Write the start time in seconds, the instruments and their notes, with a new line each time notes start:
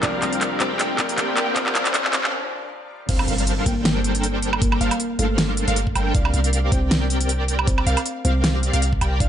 Already playing: ambient pad G3 A#3 D4 F4, riser
0.01 808-style bass C2, ambient pad C3, grand piano F3 C4 D4 A#4, analog polysynth C4 G4 A#4 D5 F5, kalimba D4 D5, kick, clap, closed hi-hat
0.22 808-style bass C2, analog polysynth C4 G4 A#4 D5 F5, clap, closed hi-hat
0.33 closed hi-hat
0.41 clap, closed hi-hat
0.60 808-style bass C2, kalimba C4 C5, analog polysynth C4 G4 A#4 D5 G5, clap, closed hi-hat
0.79 clap, closed hi-hat
0.97 grand piano F3 C4 D4 A#4, kick, clap, closed hi-hat
1.09 closed hi-hat
1.18 kick, clap, closed hi-hat
1.37 clap, closed hi-hat
1.54 grand piano F3 C4 D4 A#4, kalimba C4 C5, kick, clap, closed hi-hat
1.66 clap
1.75 808-style bass C2, analog polysynth C4 G4 A#4 D5 F5, clap, closed hi-hat
1.85 clap, closed hi-hat
1.94 clap, closed hi-hat
2.05 clap
2.13 808-style bass C2, kalimba C4 C5, analog polysynth C4 G4 A#4 D5 F5, kick, clap, closed hi-hat
2.24 clap
3.09 808-style bass G1, analog polysynth G3 D4 A4 A#4 C5 F5, kalimba C4 C5, synth pluck F5, kick, closed hi-hat, crash, impact
3.19 high woodblock
3.28 808-style bass G1, analog polysynth G3 D4 A4 A#4 C5 F5, synth pluck F5, closed hi-hat
3.38 closed hi-hat
3.47 closed hi-hat
3.66 808-style bass G1, analog polysynth G3 D4 A4 A#4 C5 G5, kalimba A#3 A#4, synth pluck G5, kick, closed hi-hat
3.85 snare, closed hi-hat
4.04 closed hi-hat
4.15 closed hi-hat
4.24 closed hi-hat
4.42 closed hi-hat
4.53 high woodblock
4.62 kalimba A#3 A#4, kick, closed hi-hat
4.72 high woodblock
4.81 808-style bass G1, analog polysynth G3 D4 A4 A#4 C5 F5, synth pluck F5, closed hi-hat
4.91 closed hi-hat, high woodblock
5.00 closed hi-hat
5.19 808-style bass G1, analog polysynth G3 D4 A4 A#4 C5 F5, kalimba A3 A4, synth pluck F5, closed hi-hat
5.38 snare, closed hi-hat
5.57 closed hi-hat
5.68 808-style bass G1, analog polysynth G3 D4 A4 A#4 C5 F5, synth pluck F5, closed hi-hat
5.76 closed hi-hat
5.87 kick
5.95 808-style bass G1, analog polysynth G3 D4 A4 A#4 C5 G5, synth pluck G5, closed hi-hat, high woodblock
6.15 808-style bass C2, analog polysynth C4 G4 A#4 D5 F5, kalimba D4 D5, synth pluck F5, kick, closed hi-hat
6.25 high woodblock
6.34 808-style bass C2, analog polysynth C4 G4 A#4 D5 F5, synth pluck F5, closed hi-hat
6.44 closed hi-hat
6.53 closed hi-hat
6.72 808-style bass C2, analog polysynth C4 G4 A#4 D5 G5, kalimba C4 C5, synth pluck G5, kick, closed hi-hat
6.91 snare, closed hi-hat
7.10 closed hi-hat
7.21 closed hi-hat
7.29 closed hi-hat
7.48 closed hi-hat
7.59 high woodblock
7.67 kalimba C4 C5, kick, closed hi-hat
7.78 high woodblock
7.87 808-style bass C2, analog polysynth C4 G4 A#4 D5 F5, synth pluck F5, closed hi-hat
7.97 closed hi-hat, high woodblock
8.06 closed hi-hat
8.25 808-style bass C2, kalimba C4 C5, analog polysynth C4 G4 A#4 D5 F5, synth pluck F5, closed hi-hat
8.44 snare, closed hi-hat
8.63 closed hi-hat
8.73 808-style bass C2, analog polysynth C4 G4 A#4 D5 F5, synth pluck F5, closed hi-hat
8.82 closed hi-hat
8.93 kick
9.01 808-style bass C2, analog polysynth C4 G4 A#4 D5 G5, synth pluck G5, closed hi-hat, high woodblock
9.20 808-style bass D2, analog polysynth D4 A4 C5 E5 F5, kalimba D4 D5, synth pluck F5, kick, closed hi-hat